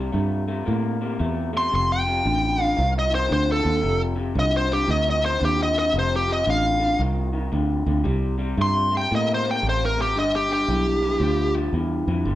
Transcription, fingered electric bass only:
0, 0, Header, 1, 2, 480
1, 0, Start_track
1, 0, Tempo, 527241
1, 1561, Time_signature, 4, 2, 24, 8
1, 11243, End_track
2, 0, Start_track
2, 0, Title_t, "Fingered electric bass"
2, 0, Program_c, 0, 33
2, 126, Note_on_c, 0, 43, 92
2, 570, Note_off_c, 0, 43, 0
2, 616, Note_on_c, 0, 45, 92
2, 1056, Note_off_c, 0, 45, 0
2, 1092, Note_on_c, 0, 40, 82
2, 1534, Note_off_c, 0, 40, 0
2, 1579, Note_on_c, 0, 29, 97
2, 2018, Note_off_c, 0, 29, 0
2, 2052, Note_on_c, 0, 33, 97
2, 2494, Note_off_c, 0, 33, 0
2, 2534, Note_on_c, 0, 36, 94
2, 2975, Note_off_c, 0, 36, 0
2, 3015, Note_on_c, 0, 38, 86
2, 3298, Note_off_c, 0, 38, 0
2, 3323, Note_on_c, 0, 39, 88
2, 3476, Note_off_c, 0, 39, 0
2, 3495, Note_on_c, 0, 29, 88
2, 3935, Note_off_c, 0, 29, 0
2, 3963, Note_on_c, 0, 36, 103
2, 4409, Note_off_c, 0, 36, 0
2, 4444, Note_on_c, 0, 38, 94
2, 4889, Note_off_c, 0, 38, 0
2, 4930, Note_on_c, 0, 39, 84
2, 5372, Note_off_c, 0, 39, 0
2, 5405, Note_on_c, 0, 29, 100
2, 5850, Note_off_c, 0, 29, 0
2, 5892, Note_on_c, 0, 33, 101
2, 6333, Note_off_c, 0, 33, 0
2, 6367, Note_on_c, 0, 36, 93
2, 6810, Note_off_c, 0, 36, 0
2, 6850, Note_on_c, 0, 38, 84
2, 7134, Note_off_c, 0, 38, 0
2, 7160, Note_on_c, 0, 38, 89
2, 7313, Note_off_c, 0, 38, 0
2, 7329, Note_on_c, 0, 36, 92
2, 7771, Note_off_c, 0, 36, 0
2, 7806, Note_on_c, 0, 43, 92
2, 8249, Note_off_c, 0, 43, 0
2, 8298, Note_on_c, 0, 45, 86
2, 8736, Note_off_c, 0, 45, 0
2, 8767, Note_on_c, 0, 33, 86
2, 9237, Note_off_c, 0, 33, 0
2, 9237, Note_on_c, 0, 31, 96
2, 9684, Note_off_c, 0, 31, 0
2, 9725, Note_on_c, 0, 35, 91
2, 10169, Note_off_c, 0, 35, 0
2, 10196, Note_on_c, 0, 38, 90
2, 10644, Note_off_c, 0, 38, 0
2, 10676, Note_on_c, 0, 40, 80
2, 10966, Note_off_c, 0, 40, 0
2, 10993, Note_on_c, 0, 41, 88
2, 11148, Note_off_c, 0, 41, 0
2, 11156, Note_on_c, 0, 31, 93
2, 11243, Note_off_c, 0, 31, 0
2, 11243, End_track
0, 0, End_of_file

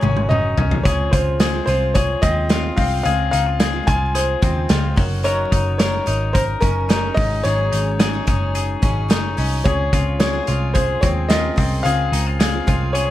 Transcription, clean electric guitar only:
0, 0, Header, 1, 2, 480
1, 0, Start_track
1, 0, Key_signature, -5, "major"
1, 0, Tempo, 550055
1, 743, Time_signature, 4, 2, 24, 8
1, 11436, End_track
2, 0, Start_track
2, 0, Title_t, "Clean electric guitar"
2, 0, Program_c, 0, 27
2, 0, Note_on_c, 0, 44, 92
2, 0, Note_on_c, 0, 63, 58
2, 0, Note_on_c, 0, 68, 71
2, 22, Note_on_c, 0, 61, 61
2, 254, Note_off_c, 0, 63, 0
2, 265, Note_on_c, 0, 63, 61
2, 499, Note_off_c, 0, 61, 0
2, 502, Note_on_c, 0, 61, 61
2, 741, Note_off_c, 0, 44, 0
2, 743, Note_off_c, 0, 68, 0
2, 747, Note_on_c, 0, 68, 75
2, 792, Note_off_c, 0, 63, 0
2, 984, Note_on_c, 0, 65, 57
2, 1215, Note_off_c, 0, 68, 0
2, 1225, Note_on_c, 0, 68, 76
2, 1458, Note_off_c, 0, 65, 0
2, 1468, Note_on_c, 0, 65, 56
2, 1693, Note_off_c, 0, 68, 0
2, 1703, Note_on_c, 0, 68, 66
2, 1940, Note_off_c, 0, 61, 0
2, 1944, Note_on_c, 0, 60, 70
2, 2172, Note_off_c, 0, 65, 0
2, 2182, Note_on_c, 0, 65, 68
2, 2412, Note_off_c, 0, 60, 0
2, 2422, Note_on_c, 0, 60, 69
2, 2656, Note_off_c, 0, 68, 0
2, 2667, Note_on_c, 0, 68, 78
2, 2898, Note_off_c, 0, 65, 0
2, 2901, Note_on_c, 0, 63, 65
2, 3022, Note_off_c, 0, 63, 0
2, 3022, Note_on_c, 0, 65, 52
2, 3129, Note_off_c, 0, 68, 0
2, 3140, Note_on_c, 0, 68, 71
2, 3369, Note_off_c, 0, 65, 0
2, 3380, Note_on_c, 0, 65, 57
2, 3608, Note_off_c, 0, 68, 0
2, 3618, Note_on_c, 0, 68, 67
2, 3846, Note_off_c, 0, 60, 0
2, 3857, Note_on_c, 0, 60, 60
2, 4086, Note_off_c, 0, 65, 0
2, 4096, Note_on_c, 0, 65, 69
2, 4333, Note_on_c, 0, 54, 82
2, 4388, Note_off_c, 0, 60, 0
2, 4388, Note_off_c, 0, 65, 0
2, 4389, Note_off_c, 0, 68, 0
2, 4573, Note_off_c, 0, 54, 0
2, 4577, Note_on_c, 0, 54, 97
2, 4582, Note_on_c, 0, 70, 80
2, 4814, Note_on_c, 0, 63, 60
2, 5046, Note_off_c, 0, 70, 0
2, 5057, Note_on_c, 0, 70, 77
2, 5293, Note_off_c, 0, 63, 0
2, 5296, Note_on_c, 0, 63, 62
2, 5525, Note_off_c, 0, 70, 0
2, 5535, Note_on_c, 0, 70, 77
2, 5772, Note_on_c, 0, 61, 66
2, 6010, Note_off_c, 0, 63, 0
2, 6014, Note_on_c, 0, 63, 76
2, 6254, Note_on_c, 0, 44, 92
2, 6307, Note_off_c, 0, 70, 0
2, 6485, Note_off_c, 0, 44, 0
2, 6494, Note_on_c, 0, 44, 95
2, 6501, Note_on_c, 0, 68, 69
2, 6521, Note_off_c, 0, 54, 0
2, 6733, Note_off_c, 0, 63, 0
2, 6736, Note_on_c, 0, 63, 65
2, 6762, Note_off_c, 0, 61, 0
2, 6972, Note_off_c, 0, 68, 0
2, 6976, Note_on_c, 0, 68, 79
2, 7207, Note_off_c, 0, 63, 0
2, 7218, Note_on_c, 0, 63, 62
2, 7457, Note_off_c, 0, 68, 0
2, 7461, Note_on_c, 0, 68, 69
2, 7699, Note_on_c, 0, 61, 63
2, 7930, Note_off_c, 0, 63, 0
2, 7940, Note_on_c, 0, 63, 64
2, 8177, Note_off_c, 0, 61, 0
2, 8180, Note_on_c, 0, 61, 61
2, 8419, Note_off_c, 0, 44, 0
2, 8422, Note_off_c, 0, 68, 0
2, 8426, Note_on_c, 0, 68, 81
2, 8470, Note_off_c, 0, 63, 0
2, 8665, Note_on_c, 0, 65, 61
2, 8895, Note_off_c, 0, 68, 0
2, 8906, Note_on_c, 0, 68, 76
2, 9132, Note_off_c, 0, 65, 0
2, 9142, Note_on_c, 0, 65, 64
2, 9369, Note_off_c, 0, 68, 0
2, 9380, Note_on_c, 0, 68, 77
2, 9619, Note_off_c, 0, 61, 0
2, 9623, Note_on_c, 0, 60, 66
2, 9851, Note_off_c, 0, 65, 0
2, 9861, Note_on_c, 0, 65, 72
2, 10091, Note_off_c, 0, 60, 0
2, 10102, Note_on_c, 0, 60, 66
2, 10336, Note_off_c, 0, 68, 0
2, 10347, Note_on_c, 0, 68, 75
2, 10577, Note_off_c, 0, 65, 0
2, 10580, Note_on_c, 0, 63, 59
2, 10703, Note_off_c, 0, 63, 0
2, 10703, Note_on_c, 0, 65, 51
2, 10807, Note_off_c, 0, 68, 0
2, 10817, Note_on_c, 0, 68, 67
2, 11049, Note_off_c, 0, 65, 0
2, 11059, Note_on_c, 0, 65, 64
2, 11285, Note_off_c, 0, 68, 0
2, 11296, Note_on_c, 0, 68, 75
2, 11436, Note_off_c, 0, 60, 0
2, 11436, Note_off_c, 0, 65, 0
2, 11436, Note_off_c, 0, 68, 0
2, 11436, End_track
0, 0, End_of_file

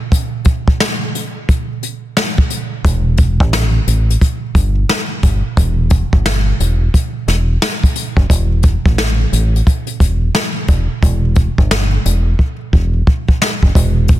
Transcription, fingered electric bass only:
0, 0, Header, 1, 2, 480
1, 0, Start_track
1, 0, Key_signature, 1, "minor"
1, 0, Tempo, 681818
1, 83, Time_signature, 4, 2, 24, 8
1, 9996, End_track
2, 0, Start_track
2, 0, Title_t, "Fingered electric bass"
2, 0, Program_c, 0, 33
2, 2004, Note_on_c, 0, 28, 101
2, 2397, Note_off_c, 0, 28, 0
2, 2397, Note_on_c, 0, 33, 87
2, 2666, Note_off_c, 0, 33, 0
2, 2725, Note_on_c, 0, 33, 82
2, 2922, Note_off_c, 0, 33, 0
2, 3204, Note_on_c, 0, 31, 87
2, 3401, Note_off_c, 0, 31, 0
2, 3685, Note_on_c, 0, 31, 89
2, 3807, Note_off_c, 0, 31, 0
2, 3924, Note_on_c, 0, 28, 105
2, 4244, Note_off_c, 0, 28, 0
2, 4316, Note_on_c, 0, 31, 87
2, 4586, Note_off_c, 0, 31, 0
2, 4644, Note_on_c, 0, 28, 86
2, 4841, Note_off_c, 0, 28, 0
2, 5124, Note_on_c, 0, 28, 92
2, 5321, Note_off_c, 0, 28, 0
2, 5750, Note_on_c, 0, 30, 87
2, 5825, Note_off_c, 0, 30, 0
2, 5843, Note_on_c, 0, 28, 99
2, 6163, Note_off_c, 0, 28, 0
2, 6236, Note_on_c, 0, 33, 88
2, 6506, Note_off_c, 0, 33, 0
2, 6565, Note_on_c, 0, 33, 96
2, 6761, Note_off_c, 0, 33, 0
2, 7043, Note_on_c, 0, 28, 78
2, 7240, Note_off_c, 0, 28, 0
2, 7524, Note_on_c, 0, 28, 94
2, 7647, Note_off_c, 0, 28, 0
2, 7763, Note_on_c, 0, 28, 112
2, 8083, Note_off_c, 0, 28, 0
2, 8156, Note_on_c, 0, 31, 86
2, 8426, Note_off_c, 0, 31, 0
2, 8485, Note_on_c, 0, 28, 98
2, 8681, Note_off_c, 0, 28, 0
2, 8963, Note_on_c, 0, 28, 91
2, 9160, Note_off_c, 0, 28, 0
2, 9593, Note_on_c, 0, 30, 92
2, 9667, Note_off_c, 0, 30, 0
2, 9683, Note_on_c, 0, 28, 114
2, 9996, Note_off_c, 0, 28, 0
2, 9996, End_track
0, 0, End_of_file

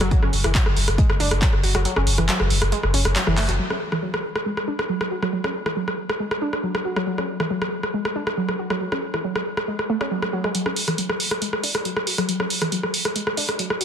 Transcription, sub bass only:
0, 0, Header, 1, 2, 480
1, 0, Start_track
1, 0, Tempo, 434783
1, 125, Time_signature, 4, 2, 24, 8
1, 15285, End_track
2, 0, Start_track
2, 0, Title_t, "Sub bass"
2, 0, Program_c, 0, 38
2, 9, Note_on_c, 0, 30, 87
2, 122, Note_off_c, 0, 30, 0
2, 249, Note_on_c, 0, 30, 76
2, 358, Note_off_c, 0, 30, 0
2, 365, Note_on_c, 0, 30, 103
2, 483, Note_off_c, 0, 30, 0
2, 490, Note_on_c, 0, 30, 85
2, 603, Note_off_c, 0, 30, 0
2, 730, Note_on_c, 0, 30, 79
2, 838, Note_off_c, 0, 30, 0
2, 845, Note_on_c, 0, 30, 103
2, 963, Note_off_c, 0, 30, 0
2, 970, Note_on_c, 0, 30, 85
2, 1083, Note_off_c, 0, 30, 0
2, 1210, Note_on_c, 0, 30, 78
2, 1319, Note_off_c, 0, 30, 0
2, 1325, Note_on_c, 0, 30, 101
2, 1443, Note_off_c, 0, 30, 0
2, 1450, Note_on_c, 0, 30, 84
2, 1563, Note_off_c, 0, 30, 0
2, 1689, Note_on_c, 0, 30, 76
2, 1798, Note_off_c, 0, 30, 0
2, 1805, Note_on_c, 0, 30, 97
2, 1922, Note_off_c, 0, 30, 0
2, 1929, Note_on_c, 0, 30, 86
2, 2043, Note_off_c, 0, 30, 0
2, 2169, Note_on_c, 0, 30, 77
2, 2278, Note_off_c, 0, 30, 0
2, 2284, Note_on_c, 0, 30, 100
2, 2402, Note_off_c, 0, 30, 0
2, 2409, Note_on_c, 0, 30, 86
2, 2522, Note_off_c, 0, 30, 0
2, 2649, Note_on_c, 0, 30, 81
2, 2758, Note_off_c, 0, 30, 0
2, 2765, Note_on_c, 0, 30, 104
2, 2883, Note_off_c, 0, 30, 0
2, 2889, Note_on_c, 0, 30, 86
2, 3003, Note_off_c, 0, 30, 0
2, 3129, Note_on_c, 0, 30, 77
2, 3239, Note_off_c, 0, 30, 0
2, 3245, Note_on_c, 0, 30, 99
2, 3363, Note_off_c, 0, 30, 0
2, 3369, Note_on_c, 0, 30, 83
2, 3483, Note_off_c, 0, 30, 0
2, 3609, Note_on_c, 0, 30, 75
2, 3718, Note_off_c, 0, 30, 0
2, 3725, Note_on_c, 0, 30, 99
2, 3842, Note_off_c, 0, 30, 0
2, 3849, Note_on_c, 0, 30, 84
2, 3963, Note_off_c, 0, 30, 0
2, 15285, End_track
0, 0, End_of_file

